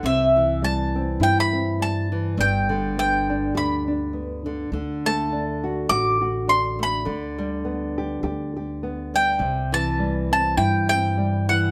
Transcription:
0.00 1.17 C2 medium
0.00 0.36 C3 medium
0.00 0.62 G3 medium
0.00 1.21 G4 medium
0.06 0.60 E5 medium
0.36 2.11 E3 medium
0.62 1.78 G3 medium
0.62 1.23 A5 medium
0.96 1.52 C4 medium
1.20 2.34 G2 medium
1.20 2.38 E4 medium
1.20 1.39 G5 loud
1.40 1.78 B5 loud
1.53 2.35 C4 medium
1.79 2.97 G3 medium
1.79 2.36 A5 medium
2.12 2.35 E3 medium
2.37 3.51 G1 medium
2.37 4.69 G2 medium
2.37 2.98 G5 medium
2.69 4.45 D3 medium
2.97 4.12 B3 medium
2.97 3.53 G5 medium
3.29 3.87 D4 medium
3.55 4.68 D2 medium
3.55 4.69 G4 medium
3.55 4.43 B5 medium
3.88 5.32 D4 medium
4.13 4.69 B3 medium
4.46 4.72 D3 medium
4.72 5.85 D2 medium
4.72 7.04 D3 medium
5.06 6.78 A3 medium
5.06 5.86 A5 medium
5.32 6.46 D4 medium
5.64 5.89 F#4 medium
5.89 7.03 A1 medium
5.89 6.20 F#4 medium
5.89 6.49 D6 loud
6.21 7.03 F#4 medium
6.48 7.03 D4 medium
6.48 6.79 C6 medium
6.79 7.03 A3 medium
6.83 7.36 B5 medium
7.05 8.20 D2 loud
7.05 9.40 D3 medium
7.38 9.14 G3 medium
7.65 8.82 B3 medium
7.98 8.23 G4 medium
8.23 9.36 D2 medium
8.23 8.56 G4 medium
8.57 10.57 G4 medium
8.83 9.41 B3 medium
9.14 9.99 G3 medium
9.14 9.73 G5 medium
9.39 10.54 C2 medium
9.39 9.72 C3 medium
9.72 11.49 E3 medium
9.72 10.28 A5 loud
9.99 11.17 G3 medium
10.32 10.90 C4 medium
10.32 10.57 A5 loud
10.57 11.71 G2 loud
10.57 11.71 E4 medium
10.57 10.88 G5 medium
10.89 11.71 C4 medium
10.89 11.49 G5 loud
11.18 11.71 G3 medium
11.49 11.71 E3 medium
11.49 11.71 F#5 medium

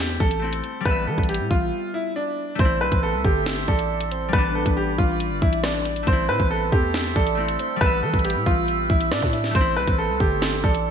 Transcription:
0.00 0.18 E2 loud
0.00 0.39 A3 medium
0.00 0.41 C4 medium
0.00 0.23 D4 medium
0.00 0.44 E4 medium
0.00 0.18 G4 medium
0.20 0.62 A1 loud
0.20 0.82 A4 medium
0.20 kick loud
0.31 closed hi-hat medium
0.39 0.84 A3 soft
0.39 0.85 C4 soft
0.44 0.87 E4 medium
0.53 closed hi-hat medium
0.64 closed hi-hat medium
0.81 2.64 G3 medium
0.85 1.09 A1 loud
0.85 2.66 B3 medium
0.85 1.02 B4 loud
0.85 kick loud
0.85 closed hi-hat medium
0.90 2.62 E5 medium
1.07 1.18 E3 loud
1.07 1.24 A4 medium
1.18 1.41 A1 loud
1.18 kick medium
1.18 closed hi-hat soft
1.23 closed hi-hat medium
1.29 1.45 G4 medium
1.29 closed hi-hat medium
1.34 closed hi-hat medium
1.40 1.50 A2 loud
1.51 1.72 A1 loud
1.51 1.92 F4 medium
1.51 kick loud
1.94 2.11 E4 medium
2.16 2.57 D4 medium
2.55 5.88 A3 medium
2.59 2.82 A1 loud
2.59 4.39 C4 medium
2.59 4.32 A4 medium
2.59 2.76 C5 medium
2.59 4.32 E5 medium
2.59 4.32 C6 medium
2.59 4.32 E6 medium
2.59 kick loud
2.59 closed hi-hat medium
2.65 5.26 E4 medium
2.81 2.91 B1 loud
2.81 2.97 B4 medium
2.81 3.02 C5 medium
2.92 3.15 A1 loud
2.92 kick medium
2.92 closed hi-hat medium
3.03 3.19 A4 medium
3.03 3.23 B4 medium
3.14 3.24 C2 loud
3.24 3.66 G1 loud
3.24 3.66 G4 medium
3.24 3.65 A4 medium
3.24 kick loud
3.46 snare loud
3.46 closed hi-hat medium
3.68 4.31 A1 loud
3.68 4.29 A4 medium
3.68 4.09 D5 medium
3.68 kick loud
3.79 closed hi-hat medium
4.01 closed hi-hat medium
4.11 4.32 C5 medium
4.11 closed hi-hat medium
4.29 6.12 G3 medium
4.33 4.65 A1 loud
4.33 6.14 B3 medium
4.33 6.05 G4 medium
4.33 5.16 B4 loud
4.33 4.50 B4 loud
4.33 6.05 D5 medium
4.33 6.05 B5 medium
4.33 6.05 D6 medium
4.33 kick loud
4.33 closed hi-hat medium
4.38 7.18 D4 medium
4.55 4.71 A4 medium
4.66 4.97 A1 loud
4.66 kick medium
4.66 closed hi-hat medium
4.77 4.93 G4 medium
4.98 5.33 A1 loud
4.98 5.39 F4 medium
4.98 kick loud
5.20 closed hi-hat medium
5.31 5.41 G1 loud
5.42 6.05 A1 loud
5.42 5.58 E4 medium
5.42 kick loud
5.53 closed hi-hat medium
5.64 6.05 D4 medium
5.64 cross-stick loud
5.64 snare loud
5.64 closed hi-hat medium
5.85 closed hi-hat medium
5.96 closed hi-hat medium
6.03 7.35 A3 medium
6.07 6.30 A1 loud
6.07 7.37 C4 medium
6.07 7.79 A4 medium
6.07 6.24 C5 medium
6.07 10.91 E5 medium
6.07 7.79 C6 medium
6.07 10.91 E6 medium
6.07 kick loud
6.07 closed hi-hat medium
6.12 7.39 E4 medium
6.29 6.39 A2 loud
6.29 6.45 B4 loud
6.29 6.50 C5 medium
6.40 6.71 A1 loud
6.40 kick medium
6.40 closed hi-hat medium
6.50 6.67 A4 medium
6.50 6.71 B4 medium
6.72 7.14 E2 loud
6.72 7.13 G4 medium
6.72 7.13 A4 medium
6.72 kick loud
6.94 snare loud
6.94 closed hi-hat medium
7.16 7.58 A1 loud
7.16 7.77 A4 medium
7.16 7.57 D5 medium
7.16 kick loud
7.27 closed hi-hat medium
7.35 7.80 A3 soft
7.35 7.81 C4 soft
7.40 7.82 E4 medium
7.48 closed hi-hat medium
7.59 7.80 C5 medium
7.59 closed hi-hat medium
7.76 9.60 G3 medium
7.81 8.04 A1 loud
7.81 9.62 B3 medium
7.81 9.53 G4 medium
7.81 7.97 B4 loud
7.81 8.64 B4 loud
7.81 9.53 B5 medium
7.81 kick loud
7.81 closed hi-hat medium
7.86 9.58 E5 medium
8.03 8.13 E3 loud
8.03 8.19 A4 medium
8.14 8.37 A1 loud
8.14 kick medium
8.14 closed hi-hat soft
8.19 closed hi-hat medium
8.25 8.41 G4 medium
8.25 closed hi-hat medium
8.30 closed hi-hat medium
8.35 8.46 A2 loud
8.46 8.88 A1 loud
8.46 8.87 F4 loud
8.46 kick loud
8.68 closed hi-hat medium
8.90 9.13 A1 loud
8.90 9.06 E4 medium
8.90 kick loud
9.01 closed hi-hat medium
9.11 9.22 A2 loud
9.11 9.52 D4 medium
9.11 9.32 D5 medium
9.11 cross-stick loud
9.11 snare loud
9.11 closed hi-hat medium
9.22 9.54 A2 loud
9.22 kick medium
9.33 9.54 E5 medium
9.33 closed hi-hat medium
9.44 snare medium
9.44 closed hi-hat medium
9.51 9.78 A1 loud
9.51 10.91 A3 medium
9.51 9.71 C5 loud
9.51 10.91 C6 medium
9.51 kick loud
9.51 closed hi-hat medium
9.55 10.91 C4 medium
9.55 10.91 A4 medium
9.61 10.91 E4 medium
9.77 9.87 B1 medium
9.77 9.93 B4 medium
9.77 9.97 C5 medium
9.88 10.11 A1 loud
9.88 kick medium
9.88 closed hi-hat medium
9.98 10.15 A4 medium
9.98 10.19 B4 medium
10.09 10.20 C2 loud
10.20 10.62 G1 loud
10.20 10.61 G4 medium
10.20 10.61 A4 medium
10.20 kick loud
10.42 snare loud
10.42 closed hi-hat medium
10.64 10.91 A1 loud
10.64 10.91 A4 medium
10.64 10.91 D5 medium
10.64 kick loud
10.75 closed hi-hat medium

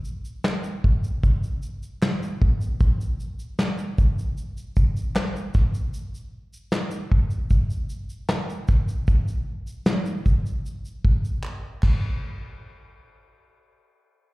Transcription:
0.05 shaker medium
0.25 shaker medium
0.44 snare loud
0.44 clap medium
0.44 shaker medium
0.64 shaker medium
0.84 kick loud
1.04 shaker medium
1.23 kick medium
1.23 shaker medium
1.43 shaker soft
1.62 shaker medium
1.83 shaker medium
2.02 snare loud
2.02 clap loud
2.02 shaker medium
2.23 shaker soft
2.42 kick loud
2.61 shaker medium
2.80 kick loud
2.80 shaker medium
3.01 shaker medium
3.20 shaker medium
3.39 shaker medium
3.59 snare loud
3.59 clap medium
3.59 shaker medium
3.78 shaker medium
3.98 kick loud
3.98 shaker medium
4.19 shaker medium
4.38 shaker medium
4.57 shaker medium
4.76 kick medium
4.76 shaker medium
4.97 shaker medium
5.16 snare loud
5.16 clap loud
5.16 shaker medium
5.36 shaker medium
5.54 kick loud
5.54 snare soft
5.54 shaker medium
5.74 shaker medium
5.94 shaker medium
6.15 shaker medium
6.53 shaker medium
6.72 snare loud
6.72 clap medium
6.72 shaker medium
6.91 shaker medium
7.12 kick loud
7.31 shaker medium
7.50 kick medium
7.50 shaker medium
7.70 shaker medium
7.89 shaker medium
8.09 shaker medium
8.29 snare loud
8.29 clap medium
8.29 shaker medium
8.50 shaker soft
8.68 kick loud
8.68 snare soft
8.68 shaker medium
8.88 shaker medium
9.07 kick loud
9.07 shaker medium
9.28 shaker medium
9.67 shaker medium
9.86 snare loud
9.86 clap loud
9.86 shaker medium
10.05 shaker medium
10.26 kick medium
10.26 shaker medium
10.46 shaker soft
10.66 shaker medium
10.85 shaker medium
11.05 kick medium
11.25 shaker medium
11.43 clap loud
11.83 kick loud
11.83 clap medium
11.83 crash medium

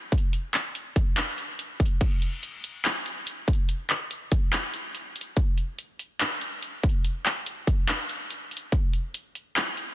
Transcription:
0.12 kick loud
0.12 closed hi-hat soft
0.18 closed hi-hat medium
0.33 closed hi-hat medium
0.54 clap medium
0.54 closed hi-hat medium
0.75 closed hi-hat medium
0.96 kick medium
0.96 closed hi-hat medium
1.17 clap loud
1.17 closed hi-hat medium
1.38 closed hi-hat medium
1.59 closed hi-hat medium
1.80 kick medium
1.80 closed hi-hat soft
1.86 closed hi-hat medium
2.01 kick loud
2.01 closed hi-hat medium
2.01 crash medium
2.22 closed hi-hat medium
2.43 closed hi-hat medium
2.64 closed hi-hat medium
2.85 clap loud
2.85 closed hi-hat medium
3.06 closed hi-hat medium
3.27 closed hi-hat medium
3.48 kick loud
3.48 closed hi-hat medium
3.53 closed hi-hat medium
3.69 closed hi-hat medium
3.90 clap medium
3.90 closed hi-hat medium
4.11 closed hi-hat medium
4.32 kick medium
4.32 closed hi-hat medium
4.53 clap loud
4.53 closed hi-hat medium
4.74 closed hi-hat medium
4.95 closed hi-hat medium
5.16 closed hi-hat soft
5.21 closed hi-hat medium
5.37 kick loud
5.37 closed hi-hat medium
5.58 closed hi-hat medium
5.78 closed hi-hat medium
5.99 closed hi-hat medium
6.20 clap loud
6.20 closed hi-hat medium
6.41 closed hi-hat medium
6.62 closed hi-hat medium
6.83 kick loud
6.83 closed hi-hat soft
6.89 closed hi-hat medium
7.05 closed hi-hat medium
7.26 clap medium
7.26 closed hi-hat medium
7.46 closed hi-hat medium
7.67 kick medium
7.67 closed hi-hat medium
7.88 clap loud
7.88 closed hi-hat medium
8.09 closed hi-hat medium
8.30 closed hi-hat medium
8.51 closed hi-hat soft
8.57 closed hi-hat medium
8.72 kick loud
8.72 closed hi-hat medium
8.93 closed hi-hat medium
9.14 closed hi-hat medium
9.35 closed hi-hat medium
9.56 clap loud
9.56 closed hi-hat medium
9.77 closed hi-hat medium

